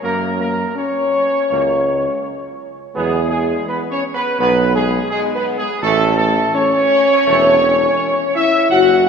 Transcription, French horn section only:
0.02 A#3
0.39 A#3
0.75 C#4
2.94 G#3
3.31 G#3
3.67 B3
3.91 C#4
4.15 B3
4.38 B3
4.74 G#3
5.11 G#3
5.35 B3
5.60 G#3
5.82 A3
6.20 A3
6.54 C#4
8.35 E4
8.71 F#4

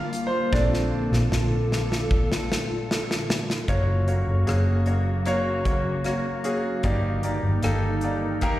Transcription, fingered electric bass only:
Already playing: A#1
0.52 A#1
1.12 A#1
1.32 A#1
3.68 F#1
4.27 F#1
4.47 F#1
6.84 G1
7.43 G1
7.62 G1

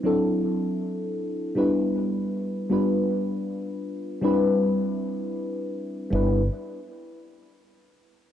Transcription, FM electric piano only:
0.03 F#3 C4 D4 E4 A4
1.55 G3 B3 D4 E4 B4
2.70 G3 B3 D4 F4 B4
4.21 G3 C4 D4 E4 B4
6.10 G3 B3 D4 E4
6.15 B4

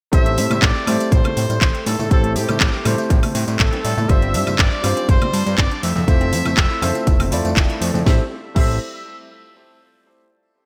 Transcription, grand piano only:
0.12 A3 C4 E4 G4 C5
0.86 A3 C4 E4 G4 C5
2.10 A3 C4 E4 G4 C5
2.84 A3 C4 E4 G4 C5
4.08 G3 C4 D4 F4 C5
4.82 G3 C4 D4 F4 C5
6.07 A3 C4 E4 F4 C5
6.82 A3 C4 E4 F4 C5
7.31 A3 C4 E4 F4 D5
8.05 A3 C4 E4 G4 C5
8.55 A3 C4 E4 G4 C5

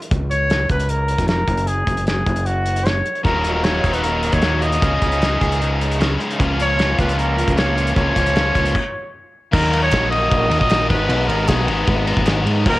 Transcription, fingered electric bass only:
0.11 C#2
0.69 C#2
1.19 F1
1.48 F#1
1.87 F#1
2.26 F#1
3.24 D#1
3.84 D#1
4.32 D#2
4.82 C#2
5.02 C#2
5.41 C#2
6.40 C#2
6.99 C#2
7.48 C#2
7.96 C#2
8.16 C#2
8.55 C#2
9.53 D#2
9.93 A#1
10.31 A#1
10.50 D#2
10.61 A#1
10.90 G#1
11.09 B1
11.28 G#1
11.48 B1
11.67 G#1
11.88 G#1
12.17 G#1
12.45 G#2
12.66 D#1

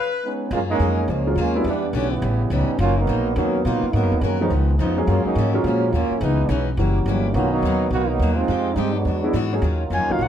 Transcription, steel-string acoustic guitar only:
0.52 F#3 A#3 F4 G#4
0.80 F#3 A#3 F4 G#4
1.09 F#3 A#3 F4 G#4
1.37 F#3 A#3 F4 G#4
1.66 E3 B3 D4 G4
1.94 E3 B3 D4 G4
2.23 A2 G3 B3 C#4
2.51 A2 G3 B3 C#4
2.81 B2 F#3 A#3 D#4
3.09 B2 F#3 A#3 D#4
3.37 B2 F#3 A#3 D#4
3.66 B2 F#3 A#3 D#4
3.95 G#3 B3 F#4 A#4
4.23 G#3 B3 F#4 A#4
4.51 C#3 F3 B3 D#4
4.80 C#3 F3 B3 D#4
5.09 F#2 F3 A#3 C#4
5.37 F#2 F3 A#3 C#4
5.66 F#2 F3 A#3 C#4
5.94 F#2 F3 A#3 C#4
6.22 C#3 E3 B3 D#4
6.50 C#3 E3 B3 D#4
6.79 F#3 A#3 E4 G4
7.08 F#3 A#3 E4 G4
7.35 B2 F#3 A#3 D#4
7.65 B2 F#3 A#3 D#4
7.92 B2 F#3 A#3 D#4
8.22 B2 F#3 A#3 D#4
8.49 F3 G#3 D#4 G4
8.77 F3 G#3 D#4 G4
9.07 E3 G#3 D4 F#4
9.34 E3 G#3 D4 F#4
9.63 D#3 F#3 C#4 F4
9.91 D#3 F#3 C#4 F4
10.20 D#3 F#3 C#4 F4

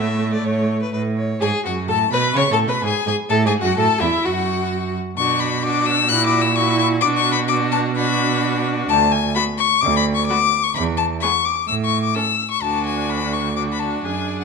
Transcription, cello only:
Already playing: A2
0.44 A2
0.93 A2
1.42 G#2
1.65 F#2
1.88 A2
2.12 B2
2.35 C#3
2.51 A2
2.67 B2
2.83 G#2
3.07 G#2
3.30 A2
3.46 G#2
3.62 F#2
3.77 A2
4.01 E2
4.25 F#2
5.18 B2
6.10 A#2
7.03 B2
8.89 D2
9.83 D2
10.75 E2
11.68 A2
12.62 D2
14.04 F#2

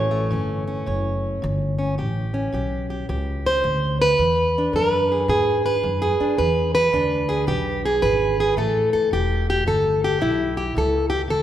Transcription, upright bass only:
Already playing: A1
0.33 G1
0.87 F#1
1.44 G1
2.00 A1
2.53 B1
3.09 C#2
3.64 D2
4.19 E2
4.73 F#2
5.28 G#2
5.83 F#2
6.20 muted upright bass stroke
6.39 E2
6.93 D2
7.47 B1
8.03 G#1
8.57 A1
8.94 muted upright bass stroke
9.13 E1
9.67 G1
10.21 B1
10.76 C#2
11.30 D2

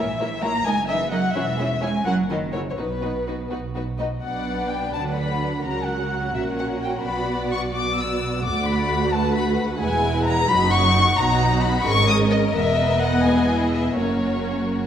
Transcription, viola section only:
0.20 A#3 E4
0.43 A#3 E4
0.66 A#3 D#4
0.89 A#3 D#4
1.12 A#3 D#4
1.35 C#4 E4
1.59 C#4 E4
1.82 C#4 E4
2.06 C#4 E4
2.30 C#4 E4
2.54 C#4 E4
2.78 B3 D#4
3.03 B3 D#4
3.27 B3 D#4
3.51 B3 D#4
3.75 B3 D#4
3.99 B3 D#4
4.23 B3 D4
4.95 F#3
5.66 F#3 F#4
6.35 C#4
7.06 B3
7.75 B3
8.44 A3 F#4
9.81 G#3 E4
10.49 F#3 D#4
11.18 F#3 D#4
11.87 G#3 C#4
12.55 B3
13.25 E4
13.96 A#3 C#4

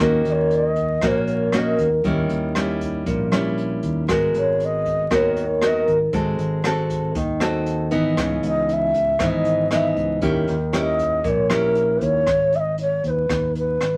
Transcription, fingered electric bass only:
0.00 D#2
0.25 D#2
1.02 A#1
1.79 D#2
2.04 D#2
2.30 D#2
3.06 A#1
3.83 D#2
4.09 G#1
4.35 G#1
5.11 D#2
5.88 G#1
6.13 G#1
6.39 G#1
7.15 D#2
7.92 G#1
8.18 C#2
8.43 C#2
9.20 G#1
9.96 C#2
10.22 D#2
10.48 D#2
11.24 A#1
12.01 D#2
12.27 G#1
13.04 D#2
13.29 D#2
13.81 G#1

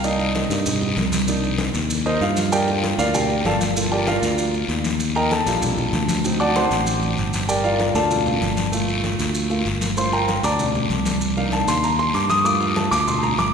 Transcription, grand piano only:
0.04 A#3 D#4 D5 D#5
0.51 A#3 D4 D#4
1.27 A#3 D4 D#4
2.06 D#4 A#4 C5 D#5
2.22 F4 F5
2.52 G4 A#4 D5 G5
2.67 A#3 F4 A4
2.99 F4 A#4 D5 F5
3.15 G4 A#4 D5 G5
3.45 A3 A#3 F4 A4 D5 F5 A5
3.76 A#3 F4 A4
3.92 G4 A#4 D5 G5
4.08 F4 A#4 D5 F5
5.16 A#4 D#5 G5 A#5
5.32 A4 A5
5.46 G3 D4 F4
6.24 F#3 C4 D#4
6.40 D5 F#5 A5 D6
6.56 C5 F#5 A5 C6
7.49 G4 A#4 D5 G5
7.64 F4 A#4 D5 F5
7.94 A3 A#3 F4 A4 D5 F5 A5
8.72 A3 A#3 F4
9.50 A3 A#3 F4
9.97 A3 A#3 F4 C5 C6
10.13 A#4 F5 G5 A#5
10.44 D5 A5 A#5 D6
11.37 A#3 D4 D#4 F5
11.53 A5
11.68 C6
11.84 A#5
11.99 C6
12.15 D6
12.30 D#6
12.41 A3 C#6
12.45 A#3 F4 D6
12.61 F5
12.76 A5
12.91 D6
13.08 C6
13.18 A5
13.23 A#5
13.39 D6

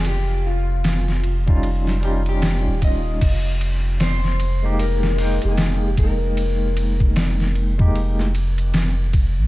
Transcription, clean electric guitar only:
0.08 G4
0.47 F4
2.05 G4
2.29 G4
2.84 D#5
4.02 C5
4.80 A#4
5.44 G#4
5.85 G4
5.99 A#4
7.48 G#4

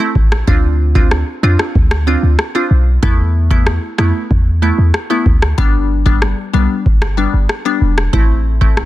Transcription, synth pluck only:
0.00 A3 C4 E4
0.47 C4 D4 F4
0.95 C4 D4 F4
1.43 C4 D4 F4
2.07 C4 D4 F4
2.55 C4 D4 F4
3.03 A3 B3 E4
3.51 A3 B3 E4
3.98 A3 B3 E4
4.62 A3 B3 E4
5.10 A3 B3 E4
5.58 G3 B3 D4
6.06 G3 B3 D4
6.53 G3 B3 D4
7.17 G3 B3 D4
7.65 G3 B3 D4
8.13 A3 C4 E4
8.61 A3 C4 E4

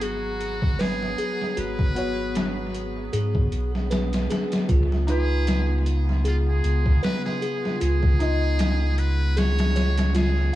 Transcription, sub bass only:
Already playing: G#1
1.57 G#1
3.13 G#2
3.52 B1
4.69 C#2
6.64 C#2
7.81 C#2

